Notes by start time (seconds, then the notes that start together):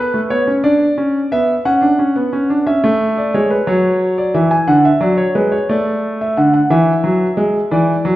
Already playing: B3 B4
0.14 A3
0.30 B3 C#5
0.47 C#4
0.64 D4 D5
0.98 C#4
1.32 B3 E5
1.65 C#4 F#5
1.81 D4
1.99 C#4
2.16 B3
2.33 C#4
2.50 D4
2.67 C#4 E5
2.84 A3
3.17 D5
3.34 G#3 C#5
3.50 B4
3.67 F#3 C#5
4.18 D5
4.34 E3 E5
4.51 G#5
4.68 D3 F#5
4.85 E5
5.01 F#3 D5
5.17 C#5
5.35 G#3 B4
5.52 C#5
5.69 A3 D5
6.21 E5
6.37 D3 F#5
6.54 F#5
6.70 E3 E5
7.04 F#3
7.37 G#3
7.71 E3 D5
8.05 F#3